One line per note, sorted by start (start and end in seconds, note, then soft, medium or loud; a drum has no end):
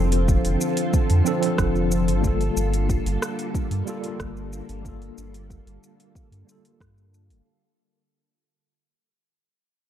0.00 0.38 F1 loud
0.00 2.21 D3 medium
0.00 1.21 F3 medium
0.00 2.21 F3 medium
0.00 1.22 C4 medium
0.00 2.20 C4 medium
0.00 1.24 D4 medium
0.00 7.42 F4 medium
0.00 1.25 A4 medium
0.00 7.42 A4 medium
0.12 open hi-hat medium
0.12 shaker soft
0.28 kick loud
0.28 shaker soft
0.45 0.57 F1 medium
0.45 open hi-hat soft
0.45 shaker soft
0.61 shaker medium
0.77 open hi-hat medium
0.77 shaker soft
0.93 kick loud
0.93 shaker soft
1.10 1.22 F2 loud
1.10 open hi-hat soft
1.10 shaker soft
1.24 1.38 F3 medium
1.24 1.38 C4 medium
1.24 1.39 D4 medium
1.24 1.39 A4 medium
1.24 shaker medium
1.39 2.18 F3 medium
1.39 2.19 C4 medium
1.39 open hi-hat medium
1.39 shaker soft
1.44 2.21 D4 medium
1.44 2.22 A4 medium
1.58 2.10 F1 medium
1.58 kick loud
1.58 cross-stick medium
1.58 shaker soft
1.75 shaker soft
1.91 shaker medium
2.08 2.50 G1 medium
2.08 open hi-hat medium
2.08 shaker soft
2.21 7.41 D3 medium
2.21 3.82 G3 medium
2.21 7.42 G3 medium
2.21 3.83 A#3 medium
2.21 7.42 A#3 medium
2.21 kick loud
2.21 shaker soft
2.25 3.84 F4 medium
2.25 3.85 A4 medium
2.41 open hi-hat soft
2.41 shaker soft
2.57 2.99 G1 medium
2.57 shaker medium
2.73 open hi-hat soft
2.73 shaker soft
2.89 kick medium
2.89 shaker soft
3.06 3.18 G1 medium
3.06 open hi-hat soft
3.06 shaker soft
3.22 cross-stick medium
3.22 shaker medium
3.39 open hi-hat soft
3.39 shaker soft
3.54 kick loud
3.54 shaker soft
3.71 3.83 G2 medium
3.71 open hi-hat soft
3.71 shaker soft
3.86 3.99 G3 medium
3.86 4.00 A#3 medium
3.86 4.00 F4 medium
3.86 4.01 A4 medium
3.86 shaker medium
4.01 4.80 G3 medium
4.01 4.81 A#3 medium
4.01 open hi-hat soft
4.01 shaker soft
4.06 4.82 F4 medium
4.06 4.83 A4 medium
4.20 4.62 G1 medium
4.20 kick loud
4.20 cross-stick medium
4.20 shaker soft
4.37 shaker soft
4.53 shaker medium
4.69 5.11 G1 medium
4.69 open hi-hat soft
4.69 shaker soft
4.82 6.43 G3 medium
4.82 6.44 A#3 medium
4.82 kick loud
4.82 shaker soft
4.86 6.45 F4 medium
4.86 6.46 A4 medium
5.02 open hi-hat soft
5.02 shaker soft
5.18 5.60 G1 medium
5.18 shaker medium
5.34 open hi-hat soft
5.34 shaker soft
5.50 kick medium
5.50 shaker soft
5.66 5.78 G1 medium
5.66 open hi-hat soft
5.66 shaker soft
5.84 shaker medium
6.00 open hi-hat soft
6.00 shaker soft
6.15 kick loud
6.15 shaker soft
6.32 6.44 G2 loud
6.32 open hi-hat soft
6.32 shaker soft
6.45 7.40 G3 medium
6.45 7.41 A#3 medium
6.45 shaker medium
6.49 7.43 F4 medium
6.49 7.44 A4 medium
6.65 open hi-hat soft
6.65 shaker soft
6.80 7.31 G2 medium
6.80 kick loud
6.80 cross-stick medium
6.80 shaker soft
6.98 shaker soft
7.14 shaker medium
7.30 7.42 F1 medium
7.30 open hi-hat soft
7.30 shaker soft